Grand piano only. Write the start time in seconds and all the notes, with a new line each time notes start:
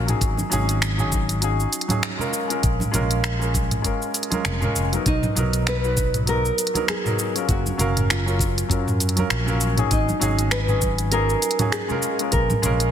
0.06 F#3 C#4 D#4 G#4
0.49 F#3 C#4 D#4 G#4
0.97 F#3 C#4 D#4 G#4
1.41 F#3 C#4 D#4 G#4
1.88 F#3 C#4 D#4 G#4
2.17 G#3 C#4 F4 A#4
2.48 G#3 C#4 F4 A#4
2.91 G#3 C#4 F4 A#4
3.39 G#3 C#4 F4 A#4
3.82 G#3 C#4 F4 A#4
4.30 G#3 C#4 F4 A#4
4.61 G#3 C#4 F4 A#4
4.92 F#3 B3 D#4 A#4
5.35 F#3 B3 D#4 A#4
5.83 F#3 B3 D#4 B4
6.26 F#3 B3 D#4 A#4
6.74 F#3 B3 D#4 A#4
7.04 F#3 B3 D#4 A#4
7.34 F#3 C#4 F4 A#4
7.77 F#3 C#4 A#4 F5
8.25 F#3 C#4 F4 A#4
8.68 F#3 C#4 F4 A#4
9.16 F#3 C#4 F4 A#4
9.45 F#3 C#4 F4 A#4
9.76 F#3 C#4 D#4 G#4
10.19 F#3 C#4 D#4 G#4
10.66 F#3 C#4 D#4 G#4
11.11 F#3 C#4 D#4 G#4
11.59 F#3 C#4 D#4 G#4
11.88 G#3 C#4 F4 A#4
12.19 G#3 C#4 F4 A#4
12.62 G#3 C#4 F4 A#4